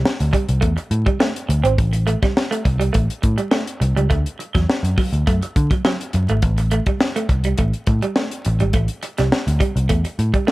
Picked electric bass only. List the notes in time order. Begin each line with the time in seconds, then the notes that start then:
0.06 muted picked electric bass stroke
0.21 D2
0.49 C2
0.63 E2
0.91 A2
1.49 D2
1.64 G#1
1.79 A1
2.65 C2
2.95 A1
3.24 A2
3.81 C2
3.96 C#2
4.11 D2
4.55 E2
4.69 muted picked electric bass stroke
4.83 F#2
5.13 D2
5.28 F#2
5.57 D3
6.14 F#2
6.29 G#1
6.43 A1
7.29 C2
7.59 A1
7.88 A2
8.46 A1
8.60 G#1
8.74 A1
9.19 C2
9.33 muted picked electric bass stroke
9.47 D2
9.76 C2
9.90 E2
10.19 A2